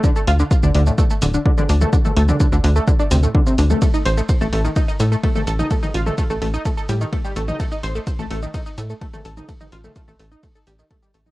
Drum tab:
RD |----------------|----------------|x---x---x---x---|x---x---x---x---|
HH |--o---o---o---o-|--o---o---o---o-|--o---o---o---o-|--o---o---o---o-|
SH |xx-xxx-xxxxx-xxx|xx-xxx-xxxxx-xxx|xx-xxx-xxxxx-xxx|xx-xxx-xxxxx-xxx|
T2 |-------------o-o|-o-o-----------o|-------------o-o|-o-o-----------o|
BD |o---o---o---o---|o---o---o---o---|o---o---o---o---|o---o---o---o---|

RD |x---x---x---x---|x---x---x---x---|
HH |--o---o---o---o-|--o---o---o---o-|
SH |xx-xxx-xxxxx-xxx|xxxxxxxxxxxxxxxx|
T2 |-------------o-o|-o-o-----------o|
BD |o---o---o---o---|o---o---o---o---|